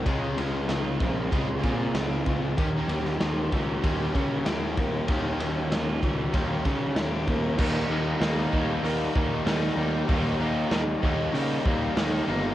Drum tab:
CC |----------------|----------------|----------------|x---------------|
RD |x-x-x-x-x-x-x-x-|x-x-x-x-x-x-x-x-|x-x-x-x-x-x-x-x-|----------------|
HH |----------------|----------------|----------------|----o---o---o---|
SD |----o-------o---|---oo-------o---|----o-------o---|----o-------o---|
BD |o-----o-o-o---o-|o-----o-o-o---o-|o-----o-o-o---o-|o-----o---o-----|

CC |----------------|
RD |----------------|
HH |o---o---o---o---|
SD |----o-------o---|
BD |o-----o---o-----|